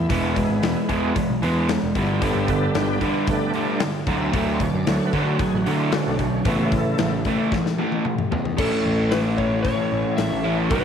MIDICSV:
0, 0, Header, 1, 6, 480
1, 0, Start_track
1, 0, Tempo, 530035
1, 98, Time_signature, 4, 2, 24, 8
1, 9819, End_track
2, 0, Start_track
2, 0, Title_t, "Electric slide guitar"
2, 0, Program_c, 0, 29
2, 7773, Note_on_c, 0, 69, 76
2, 8248, Note_on_c, 0, 71, 92
2, 8271, Note_off_c, 0, 69, 0
2, 8314, Note_off_c, 0, 71, 0
2, 8489, Note_on_c, 0, 73, 75
2, 8706, Note_off_c, 0, 73, 0
2, 8716, Note_on_c, 0, 73, 104
2, 9174, Note_off_c, 0, 73, 0
2, 9207, Note_on_c, 0, 76, 98
2, 9549, Note_off_c, 0, 76, 0
2, 9687, Note_on_c, 0, 71, 84
2, 9819, Note_off_c, 0, 71, 0
2, 9819, End_track
3, 0, Start_track
3, 0, Title_t, "Tonewheel organ"
3, 0, Program_c, 1, 16
3, 0, Note_on_c, 1, 64, 86
3, 338, Note_on_c, 1, 52, 47
3, 342, Note_on_c, 1, 56, 45
3, 344, Note_off_c, 1, 64, 0
3, 350, Note_on_c, 1, 59, 54
3, 1021, Note_off_c, 1, 52, 0
3, 1024, Note_off_c, 1, 56, 0
3, 1028, Note_off_c, 1, 59, 0
3, 1803, Note_on_c, 1, 64, 81
3, 1903, Note_off_c, 1, 64, 0
3, 1920, Note_on_c, 1, 67, 74
3, 2010, Note_on_c, 1, 68, 64
3, 2021, Note_off_c, 1, 67, 0
3, 2021, Note_on_c, 1, 50, 52
3, 2028, Note_on_c, 1, 55, 44
3, 2033, Note_on_c, 1, 59, 59
3, 2035, Note_off_c, 1, 68, 0
3, 2049, Note_on_c, 1, 69, 90
3, 2499, Note_off_c, 1, 69, 0
3, 2544, Note_on_c, 1, 67, 78
3, 2634, Note_off_c, 1, 67, 0
3, 2658, Note_on_c, 1, 62, 97
3, 2703, Note_off_c, 1, 50, 0
3, 2707, Note_off_c, 1, 55, 0
3, 2709, Note_off_c, 1, 59, 0
3, 2980, Note_on_c, 1, 55, 45
3, 2981, Note_on_c, 1, 50, 50
3, 2985, Note_on_c, 1, 59, 52
3, 2987, Note_off_c, 1, 62, 0
3, 2998, Note_on_c, 1, 57, 81
3, 3000, Note_on_c, 1, 62, 87
3, 3195, Note_off_c, 1, 50, 0
3, 3195, Note_off_c, 1, 55, 0
3, 3197, Note_off_c, 1, 59, 0
3, 3434, Note_off_c, 1, 57, 0
3, 3455, Note_off_c, 1, 62, 0
3, 3753, Note_on_c, 1, 75, 70
3, 3781, Note_off_c, 1, 75, 0
3, 3799, Note_on_c, 1, 76, 88
3, 4099, Note_off_c, 1, 76, 0
3, 4105, Note_on_c, 1, 73, 85
3, 4256, Note_off_c, 1, 73, 0
3, 4258, Note_on_c, 1, 74, 80
3, 4403, Note_on_c, 1, 50, 51
3, 4411, Note_on_c, 1, 54, 47
3, 4413, Note_off_c, 1, 74, 0
3, 4414, Note_on_c, 1, 57, 61
3, 4430, Note_on_c, 1, 73, 89
3, 4579, Note_off_c, 1, 73, 0
3, 4583, Note_on_c, 1, 71, 92
3, 4729, Note_off_c, 1, 50, 0
3, 4733, Note_off_c, 1, 54, 0
3, 4733, Note_on_c, 1, 66, 89
3, 4735, Note_off_c, 1, 57, 0
3, 4735, Note_off_c, 1, 71, 0
3, 4890, Note_off_c, 1, 66, 0
3, 4892, Note_on_c, 1, 68, 107
3, 5041, Note_on_c, 1, 66, 97
3, 5050, Note_off_c, 1, 68, 0
3, 5204, Note_off_c, 1, 66, 0
3, 5221, Note_on_c, 1, 64, 74
3, 5358, Note_on_c, 1, 50, 48
3, 5362, Note_on_c, 1, 54, 48
3, 5366, Note_on_c, 1, 57, 50
3, 5374, Note_off_c, 1, 64, 0
3, 5386, Note_on_c, 1, 61, 89
3, 5537, Note_off_c, 1, 61, 0
3, 5539, Note_on_c, 1, 62, 84
3, 5582, Note_off_c, 1, 50, 0
3, 5585, Note_off_c, 1, 54, 0
3, 5587, Note_off_c, 1, 57, 0
3, 5693, Note_off_c, 1, 62, 0
3, 5703, Note_on_c, 1, 61, 72
3, 5841, Note_on_c, 1, 52, 51
3, 5842, Note_on_c, 1, 49, 54
3, 5853, Note_on_c, 1, 57, 59
3, 5855, Note_off_c, 1, 61, 0
3, 5863, Note_on_c, 1, 59, 84
3, 6013, Note_off_c, 1, 52, 0
3, 6016, Note_off_c, 1, 59, 0
3, 6019, Note_off_c, 1, 57, 0
3, 6024, Note_on_c, 1, 52, 98
3, 6029, Note_on_c, 1, 57, 110
3, 6467, Note_off_c, 1, 52, 0
3, 6489, Note_off_c, 1, 57, 0
3, 6557, Note_off_c, 1, 49, 0
3, 6568, Note_on_c, 1, 49, 45
3, 6573, Note_on_c, 1, 57, 57
3, 6576, Note_on_c, 1, 52, 46
3, 6788, Note_off_c, 1, 49, 0
3, 6791, Note_off_c, 1, 57, 0
3, 6793, Note_off_c, 1, 52, 0
3, 7777, Note_on_c, 1, 61, 62
3, 7782, Note_on_c, 1, 64, 65
3, 7783, Note_on_c, 1, 57, 66
3, 7783, Note_on_c, 1, 73, 68
3, 9681, Note_off_c, 1, 61, 0
3, 9684, Note_off_c, 1, 57, 0
3, 9684, Note_off_c, 1, 64, 0
3, 9684, Note_off_c, 1, 73, 0
3, 9695, Note_on_c, 1, 71, 62
3, 9697, Note_on_c, 1, 59, 62
3, 9698, Note_on_c, 1, 54, 70
3, 9701, Note_on_c, 1, 63, 63
3, 9819, Note_off_c, 1, 54, 0
3, 9819, Note_off_c, 1, 59, 0
3, 9819, Note_off_c, 1, 63, 0
3, 9819, Note_off_c, 1, 71, 0
3, 9819, End_track
4, 0, Start_track
4, 0, Title_t, "Overdriven electric guitar"
4, 0, Program_c, 2, 29
4, 84, Note_on_c, 2, 52, 80
4, 91, Note_on_c, 2, 56, 93
4, 97, Note_on_c, 2, 59, 105
4, 316, Note_off_c, 2, 52, 0
4, 320, Note_off_c, 2, 56, 0
4, 323, Note_off_c, 2, 59, 0
4, 330, Note_on_c, 2, 52, 68
4, 333, Note_on_c, 2, 56, 69
4, 550, Note_off_c, 2, 52, 0
4, 551, Note_off_c, 2, 56, 0
4, 565, Note_on_c, 2, 52, 74
4, 570, Note_on_c, 2, 56, 79
4, 787, Note_off_c, 2, 52, 0
4, 790, Note_off_c, 2, 56, 0
4, 803, Note_on_c, 2, 52, 77
4, 808, Note_on_c, 2, 56, 91
4, 815, Note_on_c, 2, 59, 86
4, 1036, Note_off_c, 2, 52, 0
4, 1038, Note_off_c, 2, 56, 0
4, 1042, Note_off_c, 2, 59, 0
4, 1053, Note_on_c, 2, 52, 65
4, 1058, Note_on_c, 2, 56, 72
4, 1271, Note_off_c, 2, 52, 0
4, 1274, Note_off_c, 2, 56, 0
4, 1290, Note_on_c, 2, 52, 78
4, 1299, Note_on_c, 2, 56, 80
4, 1303, Note_on_c, 2, 59, 90
4, 1519, Note_off_c, 2, 52, 0
4, 1524, Note_off_c, 2, 56, 0
4, 1526, Note_off_c, 2, 59, 0
4, 1540, Note_on_c, 2, 52, 68
4, 1543, Note_on_c, 2, 56, 64
4, 1755, Note_off_c, 2, 52, 0
4, 1756, Note_off_c, 2, 56, 0
4, 1772, Note_on_c, 2, 43, 90
4, 1777, Note_on_c, 2, 50, 96
4, 1784, Note_on_c, 2, 55, 95
4, 2000, Note_off_c, 2, 43, 0
4, 2003, Note_off_c, 2, 50, 0
4, 2006, Note_off_c, 2, 55, 0
4, 2011, Note_on_c, 2, 43, 88
4, 2017, Note_on_c, 2, 50, 99
4, 2020, Note_on_c, 2, 55, 101
4, 2240, Note_off_c, 2, 43, 0
4, 2243, Note_off_c, 2, 50, 0
4, 2244, Note_off_c, 2, 55, 0
4, 2257, Note_on_c, 2, 43, 70
4, 2262, Note_on_c, 2, 50, 78
4, 2473, Note_off_c, 2, 43, 0
4, 2475, Note_off_c, 2, 50, 0
4, 2497, Note_on_c, 2, 43, 75
4, 2501, Note_on_c, 2, 50, 85
4, 2713, Note_off_c, 2, 43, 0
4, 2715, Note_off_c, 2, 50, 0
4, 2728, Note_on_c, 2, 43, 76
4, 2736, Note_on_c, 2, 50, 78
4, 2741, Note_on_c, 2, 55, 85
4, 2958, Note_off_c, 2, 43, 0
4, 2962, Note_off_c, 2, 50, 0
4, 2964, Note_off_c, 2, 55, 0
4, 2974, Note_on_c, 2, 43, 71
4, 2976, Note_on_c, 2, 50, 89
4, 3191, Note_off_c, 2, 43, 0
4, 3192, Note_off_c, 2, 50, 0
4, 3210, Note_on_c, 2, 43, 83
4, 3214, Note_on_c, 2, 50, 84
4, 3223, Note_on_c, 2, 55, 85
4, 3437, Note_off_c, 2, 43, 0
4, 3441, Note_off_c, 2, 50, 0
4, 3446, Note_off_c, 2, 55, 0
4, 3448, Note_on_c, 2, 43, 66
4, 3456, Note_on_c, 2, 50, 78
4, 3668, Note_off_c, 2, 43, 0
4, 3672, Note_off_c, 2, 50, 0
4, 3687, Note_on_c, 2, 50, 97
4, 3695, Note_on_c, 2, 54, 93
4, 3699, Note_on_c, 2, 57, 91
4, 3918, Note_off_c, 2, 50, 0
4, 3921, Note_off_c, 2, 54, 0
4, 3924, Note_off_c, 2, 57, 0
4, 3929, Note_on_c, 2, 50, 89
4, 3936, Note_on_c, 2, 54, 101
4, 3940, Note_on_c, 2, 57, 105
4, 4158, Note_off_c, 2, 50, 0
4, 4162, Note_off_c, 2, 54, 0
4, 4164, Note_off_c, 2, 57, 0
4, 4172, Note_on_c, 2, 50, 79
4, 4172, Note_on_c, 2, 54, 79
4, 4390, Note_off_c, 2, 50, 0
4, 4390, Note_off_c, 2, 54, 0
4, 4412, Note_on_c, 2, 50, 71
4, 4417, Note_on_c, 2, 54, 81
4, 4630, Note_off_c, 2, 50, 0
4, 4633, Note_off_c, 2, 54, 0
4, 4645, Note_on_c, 2, 50, 84
4, 4653, Note_on_c, 2, 54, 84
4, 4658, Note_on_c, 2, 57, 90
4, 4877, Note_off_c, 2, 50, 0
4, 4881, Note_off_c, 2, 54, 0
4, 4883, Note_off_c, 2, 57, 0
4, 4891, Note_on_c, 2, 50, 68
4, 4895, Note_on_c, 2, 54, 90
4, 5110, Note_off_c, 2, 50, 0
4, 5112, Note_off_c, 2, 54, 0
4, 5134, Note_on_c, 2, 50, 86
4, 5140, Note_on_c, 2, 54, 84
4, 5145, Note_on_c, 2, 57, 99
4, 5361, Note_off_c, 2, 50, 0
4, 5364, Note_off_c, 2, 54, 0
4, 5367, Note_off_c, 2, 57, 0
4, 5375, Note_on_c, 2, 50, 65
4, 5381, Note_on_c, 2, 54, 78
4, 5592, Note_off_c, 2, 50, 0
4, 5595, Note_off_c, 2, 54, 0
4, 5613, Note_on_c, 2, 50, 68
4, 5614, Note_on_c, 2, 54, 93
4, 5831, Note_off_c, 2, 50, 0
4, 5832, Note_off_c, 2, 54, 0
4, 5846, Note_on_c, 2, 45, 98
4, 5854, Note_on_c, 2, 52, 95
4, 5861, Note_on_c, 2, 57, 106
4, 6077, Note_off_c, 2, 45, 0
4, 6081, Note_off_c, 2, 52, 0
4, 6085, Note_off_c, 2, 57, 0
4, 6099, Note_on_c, 2, 45, 74
4, 6101, Note_on_c, 2, 52, 80
4, 6314, Note_off_c, 2, 45, 0
4, 6315, Note_off_c, 2, 52, 0
4, 6343, Note_on_c, 2, 45, 66
4, 6344, Note_on_c, 2, 52, 83
4, 6556, Note_off_c, 2, 45, 0
4, 6556, Note_off_c, 2, 52, 0
4, 6580, Note_on_c, 2, 45, 85
4, 6583, Note_on_c, 2, 52, 81
4, 6593, Note_on_c, 2, 57, 97
4, 6804, Note_off_c, 2, 45, 0
4, 6806, Note_off_c, 2, 52, 0
4, 6811, Note_off_c, 2, 57, 0
4, 6822, Note_on_c, 2, 45, 71
4, 6826, Note_on_c, 2, 52, 80
4, 7036, Note_off_c, 2, 45, 0
4, 7038, Note_off_c, 2, 52, 0
4, 7054, Note_on_c, 2, 45, 80
4, 7058, Note_on_c, 2, 52, 85
4, 7063, Note_on_c, 2, 57, 84
4, 7282, Note_off_c, 2, 45, 0
4, 7284, Note_off_c, 2, 52, 0
4, 7286, Note_off_c, 2, 57, 0
4, 7295, Note_on_c, 2, 45, 70
4, 7300, Note_on_c, 2, 52, 67
4, 7513, Note_off_c, 2, 45, 0
4, 7515, Note_off_c, 2, 52, 0
4, 7533, Note_on_c, 2, 45, 72
4, 7538, Note_on_c, 2, 52, 81
4, 7752, Note_off_c, 2, 45, 0
4, 7754, Note_off_c, 2, 52, 0
4, 7761, Note_on_c, 2, 45, 99
4, 7773, Note_on_c, 2, 52, 87
4, 7781, Note_on_c, 2, 57, 92
4, 7790, Note_on_c, 2, 61, 86
4, 7797, Note_on_c, 2, 64, 96
4, 9438, Note_off_c, 2, 45, 0
4, 9439, Note_off_c, 2, 64, 0
4, 9444, Note_off_c, 2, 52, 0
4, 9447, Note_off_c, 2, 57, 0
4, 9450, Note_off_c, 2, 61, 0
4, 9450, Note_on_c, 2, 64, 83
4, 9461, Note_on_c, 2, 61, 80
4, 9471, Note_on_c, 2, 57, 67
4, 9480, Note_on_c, 2, 52, 67
4, 9487, Note_on_c, 2, 45, 78
4, 9681, Note_off_c, 2, 64, 0
4, 9687, Note_off_c, 2, 61, 0
4, 9690, Note_off_c, 2, 45, 0
4, 9692, Note_off_c, 2, 57, 0
4, 9694, Note_on_c, 2, 47, 94
4, 9696, Note_off_c, 2, 52, 0
4, 9704, Note_on_c, 2, 51, 96
4, 9714, Note_on_c, 2, 54, 109
4, 9724, Note_on_c, 2, 59, 94
4, 9732, Note_on_c, 2, 63, 96
4, 9819, Note_off_c, 2, 47, 0
4, 9819, Note_off_c, 2, 51, 0
4, 9819, Note_off_c, 2, 54, 0
4, 9819, Note_off_c, 2, 59, 0
4, 9819, Note_off_c, 2, 63, 0
4, 9819, End_track
5, 0, Start_track
5, 0, Title_t, "Picked electric bass"
5, 0, Program_c, 3, 34
5, 92, Note_on_c, 3, 28, 92
5, 392, Note_off_c, 3, 28, 0
5, 451, Note_on_c, 3, 32, 77
5, 553, Note_off_c, 3, 32, 0
5, 571, Note_on_c, 3, 28, 84
5, 673, Note_off_c, 3, 28, 0
5, 812, Note_on_c, 3, 40, 79
5, 1013, Note_off_c, 3, 40, 0
5, 1178, Note_on_c, 3, 35, 84
5, 1277, Note_off_c, 3, 35, 0
5, 1296, Note_on_c, 3, 40, 85
5, 1594, Note_off_c, 3, 40, 0
5, 1659, Note_on_c, 3, 28, 84
5, 1757, Note_off_c, 3, 28, 0
5, 1772, Note_on_c, 3, 31, 92
5, 2072, Note_off_c, 3, 31, 0
5, 2130, Note_on_c, 3, 31, 79
5, 2430, Note_off_c, 3, 31, 0
5, 2490, Note_on_c, 3, 31, 89
5, 2691, Note_off_c, 3, 31, 0
5, 3685, Note_on_c, 3, 38, 92
5, 3888, Note_off_c, 3, 38, 0
5, 3927, Note_on_c, 3, 38, 97
5, 4229, Note_off_c, 3, 38, 0
5, 4288, Note_on_c, 3, 42, 82
5, 4391, Note_off_c, 3, 42, 0
5, 4411, Note_on_c, 3, 38, 86
5, 4513, Note_off_c, 3, 38, 0
5, 4647, Note_on_c, 3, 50, 78
5, 4849, Note_off_c, 3, 50, 0
5, 5017, Note_on_c, 3, 33, 88
5, 5116, Note_off_c, 3, 33, 0
5, 5133, Note_on_c, 3, 50, 86
5, 5432, Note_off_c, 3, 50, 0
5, 5494, Note_on_c, 3, 35, 78
5, 5793, Note_off_c, 3, 35, 0
5, 5844, Note_on_c, 3, 33, 91
5, 5949, Note_off_c, 3, 33, 0
5, 5979, Note_on_c, 3, 33, 80
5, 6276, Note_off_c, 3, 33, 0
5, 6338, Note_on_c, 3, 33, 92
5, 6536, Note_off_c, 3, 33, 0
5, 7542, Note_on_c, 3, 40, 100
5, 7739, Note_off_c, 3, 40, 0
5, 7776, Note_on_c, 3, 33, 80
5, 7876, Note_off_c, 3, 33, 0
5, 8023, Note_on_c, 3, 33, 86
5, 8816, Note_off_c, 3, 33, 0
5, 8985, Note_on_c, 3, 33, 76
5, 9082, Note_off_c, 3, 33, 0
5, 9224, Note_on_c, 3, 33, 84
5, 9322, Note_off_c, 3, 33, 0
5, 9350, Note_on_c, 3, 33, 91
5, 9698, Note_off_c, 3, 33, 0
5, 9698, Note_on_c, 3, 35, 84
5, 9799, Note_off_c, 3, 35, 0
5, 9819, End_track
6, 0, Start_track
6, 0, Title_t, "Drums"
6, 90, Note_on_c, 9, 36, 107
6, 92, Note_on_c, 9, 46, 80
6, 181, Note_off_c, 9, 36, 0
6, 183, Note_off_c, 9, 46, 0
6, 330, Note_on_c, 9, 36, 88
6, 332, Note_on_c, 9, 46, 61
6, 420, Note_off_c, 9, 36, 0
6, 423, Note_off_c, 9, 46, 0
6, 571, Note_on_c, 9, 46, 74
6, 575, Note_on_c, 9, 38, 92
6, 661, Note_off_c, 9, 46, 0
6, 666, Note_off_c, 9, 38, 0
6, 807, Note_on_c, 9, 46, 55
6, 809, Note_on_c, 9, 36, 72
6, 898, Note_off_c, 9, 46, 0
6, 900, Note_off_c, 9, 36, 0
6, 1049, Note_on_c, 9, 46, 65
6, 1050, Note_on_c, 9, 36, 98
6, 1140, Note_off_c, 9, 46, 0
6, 1141, Note_off_c, 9, 36, 0
6, 1294, Note_on_c, 9, 46, 56
6, 1385, Note_off_c, 9, 46, 0
6, 1529, Note_on_c, 9, 46, 65
6, 1534, Note_on_c, 9, 38, 96
6, 1620, Note_off_c, 9, 46, 0
6, 1624, Note_off_c, 9, 38, 0
6, 1768, Note_on_c, 9, 46, 54
6, 1769, Note_on_c, 9, 36, 79
6, 1859, Note_off_c, 9, 46, 0
6, 1860, Note_off_c, 9, 36, 0
6, 2009, Note_on_c, 9, 36, 99
6, 2009, Note_on_c, 9, 46, 82
6, 2099, Note_off_c, 9, 46, 0
6, 2100, Note_off_c, 9, 36, 0
6, 2248, Note_on_c, 9, 46, 59
6, 2249, Note_on_c, 9, 36, 81
6, 2339, Note_off_c, 9, 36, 0
6, 2339, Note_off_c, 9, 46, 0
6, 2488, Note_on_c, 9, 46, 62
6, 2493, Note_on_c, 9, 38, 88
6, 2579, Note_off_c, 9, 46, 0
6, 2583, Note_off_c, 9, 38, 0
6, 2726, Note_on_c, 9, 36, 69
6, 2727, Note_on_c, 9, 46, 52
6, 2817, Note_off_c, 9, 36, 0
6, 2818, Note_off_c, 9, 46, 0
6, 2963, Note_on_c, 9, 46, 71
6, 2966, Note_on_c, 9, 36, 101
6, 3054, Note_off_c, 9, 46, 0
6, 3057, Note_off_c, 9, 36, 0
6, 3202, Note_on_c, 9, 46, 49
6, 3293, Note_off_c, 9, 46, 0
6, 3440, Note_on_c, 9, 46, 58
6, 3445, Note_on_c, 9, 38, 107
6, 3531, Note_off_c, 9, 46, 0
6, 3535, Note_off_c, 9, 38, 0
6, 3684, Note_on_c, 9, 36, 83
6, 3685, Note_on_c, 9, 46, 47
6, 3775, Note_off_c, 9, 36, 0
6, 3776, Note_off_c, 9, 46, 0
6, 3926, Note_on_c, 9, 36, 109
6, 3926, Note_on_c, 9, 46, 78
6, 4016, Note_off_c, 9, 36, 0
6, 4017, Note_off_c, 9, 46, 0
6, 4166, Note_on_c, 9, 36, 84
6, 4166, Note_on_c, 9, 46, 60
6, 4256, Note_off_c, 9, 36, 0
6, 4257, Note_off_c, 9, 46, 0
6, 4408, Note_on_c, 9, 46, 69
6, 4413, Note_on_c, 9, 38, 94
6, 4499, Note_off_c, 9, 46, 0
6, 4503, Note_off_c, 9, 38, 0
6, 4646, Note_on_c, 9, 36, 70
6, 4648, Note_on_c, 9, 46, 49
6, 4736, Note_off_c, 9, 36, 0
6, 4738, Note_off_c, 9, 46, 0
6, 4884, Note_on_c, 9, 46, 74
6, 4885, Note_on_c, 9, 36, 91
6, 4975, Note_off_c, 9, 36, 0
6, 4975, Note_off_c, 9, 46, 0
6, 5130, Note_on_c, 9, 46, 61
6, 5221, Note_off_c, 9, 46, 0
6, 5362, Note_on_c, 9, 46, 72
6, 5367, Note_on_c, 9, 38, 99
6, 5453, Note_off_c, 9, 46, 0
6, 5457, Note_off_c, 9, 38, 0
6, 5605, Note_on_c, 9, 36, 77
6, 5605, Note_on_c, 9, 46, 54
6, 5695, Note_off_c, 9, 46, 0
6, 5696, Note_off_c, 9, 36, 0
6, 5842, Note_on_c, 9, 46, 82
6, 5844, Note_on_c, 9, 36, 117
6, 5933, Note_off_c, 9, 46, 0
6, 5935, Note_off_c, 9, 36, 0
6, 6084, Note_on_c, 9, 46, 59
6, 6085, Note_on_c, 9, 36, 98
6, 6174, Note_off_c, 9, 46, 0
6, 6176, Note_off_c, 9, 36, 0
6, 6324, Note_on_c, 9, 46, 59
6, 6329, Note_on_c, 9, 38, 98
6, 6415, Note_off_c, 9, 46, 0
6, 6419, Note_off_c, 9, 38, 0
6, 6564, Note_on_c, 9, 46, 53
6, 6567, Note_on_c, 9, 36, 73
6, 6655, Note_off_c, 9, 46, 0
6, 6657, Note_off_c, 9, 36, 0
6, 6810, Note_on_c, 9, 36, 93
6, 6817, Note_on_c, 9, 38, 57
6, 6900, Note_off_c, 9, 36, 0
6, 6907, Note_off_c, 9, 38, 0
6, 6937, Note_on_c, 9, 38, 53
6, 7028, Note_off_c, 9, 38, 0
6, 7049, Note_on_c, 9, 48, 62
6, 7140, Note_off_c, 9, 48, 0
6, 7174, Note_on_c, 9, 48, 67
6, 7264, Note_off_c, 9, 48, 0
6, 7290, Note_on_c, 9, 47, 74
6, 7381, Note_off_c, 9, 47, 0
6, 7412, Note_on_c, 9, 45, 75
6, 7502, Note_off_c, 9, 45, 0
6, 7535, Note_on_c, 9, 43, 91
6, 7625, Note_off_c, 9, 43, 0
6, 7656, Note_on_c, 9, 43, 78
6, 7747, Note_off_c, 9, 43, 0
6, 7772, Note_on_c, 9, 49, 110
6, 7774, Note_on_c, 9, 36, 119
6, 7862, Note_off_c, 9, 49, 0
6, 7865, Note_off_c, 9, 36, 0
6, 8254, Note_on_c, 9, 46, 59
6, 8258, Note_on_c, 9, 38, 93
6, 8344, Note_off_c, 9, 46, 0
6, 8349, Note_off_c, 9, 38, 0
6, 8497, Note_on_c, 9, 36, 69
6, 8587, Note_off_c, 9, 36, 0
6, 8734, Note_on_c, 9, 46, 51
6, 8736, Note_on_c, 9, 36, 95
6, 8825, Note_off_c, 9, 46, 0
6, 8827, Note_off_c, 9, 36, 0
6, 9218, Note_on_c, 9, 46, 58
6, 9222, Note_on_c, 9, 38, 86
6, 9308, Note_off_c, 9, 46, 0
6, 9313, Note_off_c, 9, 38, 0
6, 9692, Note_on_c, 9, 46, 53
6, 9697, Note_on_c, 9, 36, 110
6, 9783, Note_off_c, 9, 46, 0
6, 9787, Note_off_c, 9, 36, 0
6, 9819, End_track
0, 0, End_of_file